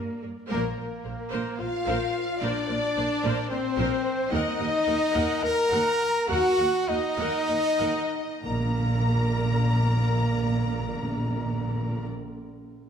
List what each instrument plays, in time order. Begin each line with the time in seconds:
Already playing: french horn section G3 D4, cello section A#3, trumpet A#4, flute A#4, violin section A#4, viola section D5
0.22 double bass section G2, viola section A#4
0.48 double bass section A#1, cello section A#2, trumpet A#3, french horn section A#3, viola section A#4 C5, violin section A#4, flute A#4
0.76 double bass section A#1, cello section A#2, viola section A#4 C5
1.04 double bass section A#1, cello section A#2, viola section A#4 C5
1.30 double bass section A#1, cello section A#2, viola section A#4 C5
1.59 double bass section A#1, cello section A#2, french horn section F4, trumpet F4, viola section A#4 C5, violin section F5, flute F5
1.87 double bass section A#1, cello section A#2, viola section A#4 C5
2.40 double bass section A#1, cello section A#2, trumpet D4, french horn section D4, viola section A#4 C5, violin section D5, flute D5
2.68 double bass section A#1, cello section A#2, viola section A#4 C5
2.96 double bass section A#1, cello section A#2, viola section A#4 C5
3.23 double bass section A#1, cello section A#2, viola section A#4 C5
3.49 double bass section A#1, cello section A#2, french horn section C4, trumpet C4, viola section A#4 C5, flute C5, violin section C5
3.77 double bass section A#1, cello section A#2, viola section A#4 C5
4.31 cello section D#2, double bass section D#2, french horn section D#4, trumpet D#4, viola section A#4 F#5, violin section D#5, flute D#5
4.60 double bass section D#2, cello section D#2, viola section A#4 F#5
4.87 cello section D#2, double bass section D#2, viola section A#4 F#5
5.14 cello section D#2, double bass section D#2, viola section A#4 F#5
5.42 double bass section D#2, cello section D#2, trumpet A#4, viola section A#4 F#5, french horn section A#4, violin section A#5, flute A#5
5.70 cello section D#2, double bass section D#2, viola section A#4 F#5
6.29 double bass section D#2, cello section D#2, trumpet F#4, french horn section F#4, viola section A#4 F#5, flute F#5, violin section F#5
6.58 double bass section D#2, cello section D#2, viola section A#4 F#5
6.88 double bass section D#2, cello section D#2, trumpet D#4, french horn section D#4, viola section A#4 F#5, violin section D#5, flute D#5
7.18 double bass section D#2, cello section D#2, viola section A#4 F#5
7.49 double bass section D#2, cello section D#2, viola section A#4 F#5
7.80 cello section D#2, double bass section D#2, viola section A#4 F#5
8.42 double bass section A#1, cello section A#2, timpani A#2, french horn section A#3, trumpet A#4, viola section A#4 D5, violin section A#5, flute A#5
8.51 timpani A#2
8.58 timpani A#2
8.65 timpani A#2
8.73 timpani A#2
8.79 timpani A#2
8.87 timpani A#2
8.94 timpani A#2
9.01 timpani A#2
9.07 timpani A#2
9.14 timpani A#2
9.22 timpani A#2
9.29 timpani A#2
9.37 timpani A#2
9.44 timpani A#2
9.51 timpani A#2
9.57 timpani A#2
9.65 timpani A#2
9.72 timpani A#2
9.79 timpani A#2
9.86 timpani A#2
9.93 timpani A#2
10.01 timpani A#2
10.08 timpani A#2
10.15 timpani A#2
10.21 timpani A#2
10.29 timpani A#2
10.36 timpani A#2
10.43 timpani A#2
10.50 timpani A#2
10.58 timpani A#2
10.65 timpani A#2
10.72 timpani A#2
10.80 timpani A#2
10.87 timpani A#2
10.95 timpani A#2
11.02 timpani A#2
11.10 timpani A#2
11.17 timpani A#2
11.24 timpani A#2
11.31 timpani A#2
11.38 timpani A#2
11.45 timpani A#2
11.53 timpani A#2
11.60 timpani A#2
11.67 timpani A#2
11.74 timpani A#2
11.81 timpani A#2
11.89 timpani A#2
11.96 timpani A#2